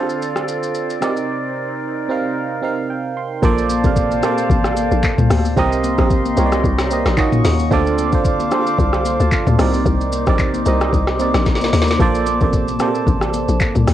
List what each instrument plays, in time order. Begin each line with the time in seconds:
Already playing: fm electric piano D3 C4 F4 A4 C5 D5 F5, flute section C4 F4 A4 D5
0.09 shaker
0.22 shaker
0.36 cross-stick, shaker
0.48 shaker
0.63 shaker
0.74 shaker
0.90 shaker
1.01 fm electric piano C3 C4 D#4 A#4 D5, flute section D#4 A#4, cross-stick, shaker
1.17 shaker
2.08 fm electric piano C3 C4 D#4 A#4 F5
2.62 fm electric piano C3 C4 D#4 A#4 F5
2.90 fm electric piano G5
3.17 fm electric piano C6
3.42 log drum bass A#1, fm electric piano A#2 A#3 A4 C5 D5, flute section C5 D5 F5 A5, kick, low conga, shaker
3.58 shaker
3.69 high conga, shaker
3.84 log drum bass A1, fm electric piano C3 A#3 A4 C5 F5, kick, shaker
3.96 kick, shaker
4.11 high conga, shaker
4.23 fm electric piano C3 A#3 A4 C5 D5, cross-stick, shaker
4.38 shaker
4.50 log drum bass A1, kick, low conga, shaker
4.64 cross-stick, shaker
4.77 high conga, shaker
4.91 log drum bass A#1, shaker
5.03 kick, clap, shaker
5.18 log drum bass C2, mid tom, high conga, shaker
5.30 log drum bass D2, cross-stick, open hi-hat, low conga, shaker
5.45 high conga, shaker
5.56 log drum bass C2, fm electric piano C3 C4 G4 A#4 D#5, flute section D#4 A#4 F5 C6, kick, low conga, shaker
5.72 shaker
5.84 high conga, shaker
5.98 log drum bass A#1, fm electric piano C3 C4 G4 A#4 D#5, kick, cross-stick, shaker
6.10 kick, shaker
6.25 high conga, shaker
6.37 log drum bass C2, fm electric piano C3 C4 G4 A#4 C#5, shaker
6.46 fm electric piano D5
6.52 cross-stick, shaker
6.64 log drum bass C2, kick, low conga, shaker
6.79 cross-stick, snare, shaker
6.91 fm electric piano C3 C4 G4 A#4 D#5, high conga, shaker
7.06 log drum bass A#1, cross-stick, snare, shaker
7.17 fm electric piano D#3 C#4 F4 F#4 D#5, flute section D#5 C#6, kick, clap, shaker
7.32 mid tom, high conga, shaker
7.45 log drum bass D#2, snare, open hi-hat, low conga, shaker
7.59 high conga, shaker
7.71 log drum bass D2, fm electric piano D3 C4 F4 A4 D5, flute section C5 F5 A5 D6, kick, low conga, shaker
7.87 shaker
7.98 high conga, shaker
8.12 log drum bass C2, fm electric piano D3 C4 F4 A4 C5, kick, shaker
8.25 kick, shaker
8.40 high conga, shaker
8.51 fm electric piano D3 C4 F4 A4 C5, cross-stick, shaker
8.67 shaker
8.78 log drum bass C2, kick, low conga, shaker
8.93 cross-stick, shaker
9.05 fm electric piano C6, high conga, shaker
9.20 log drum bass D2, fm electric piano C5 A5, shaker
9.31 fm electric piano A4 F5, kick, clap, shaker
9.46 log drum bass D2, fm electric piano F4 D5, mid tom, high conga, shaker
9.58 log drum bass C2, fm electric piano C3 C4 D#4 A#4 D5, flute section D#4 D6, cross-stick, open hi-hat, low conga, shaker
9.74 high conga, shaker
9.85 log drum bass C2, kick, low conga, shaker
10.01 shaker
10.12 high conga, shaker
10.27 log drum bass A#1, fm electric piano C3 C4 D#4 A#4 D5, kick, cross-stick, shaker
10.39 kick, clap, shaker
10.54 high conga, shaker
10.65 log drum bass C2, fm electric piano C3 C4 D#4 A#4 D#5, shaker
10.81 cross-stick, shaker
10.93 log drum bass C2, kick, low conga, shaker
11.07 cross-stick, snare, shaker
11.19 fm electric piano C3 C4 D#4 A#4 D5, high conga, shaker
11.34 log drum bass A#1, cross-stick, snare, shaker
11.46 kick, snare, shaker
11.55 snare
11.61 snare, high conga, shaker
11.73 log drum bass D#2, snare, open hi-hat, low conga, shaker
11.82 snare
11.88 snare, high conga, shaker
11.99 log drum bass A#1, fm electric piano A#2 A#3 A4 C5 D5, flute section A5, kick, low conga, shaker
12.15 shaker
12.26 high conga, shaker
12.41 log drum bass A1, fm electric piano C3 A#3 A4 C5 D5, kick, shaker
12.53 kick, shaker
12.68 high conga, shaker
12.79 fm electric piano C3 A#3 A4 C5 D5, cross-stick, shaker
12.95 shaker
13.07 log drum bass A1, kick, low conga, shaker
13.21 cross-stick, shaker
13.34 high conga, shaker
13.48 log drum bass A#1, shaker
13.60 kick, clap, shaker
13.75 log drum bass C2, mid tom, high conga, shaker
13.87 log drum bass D2, cross-stick, open hi-hat, low conga, shaker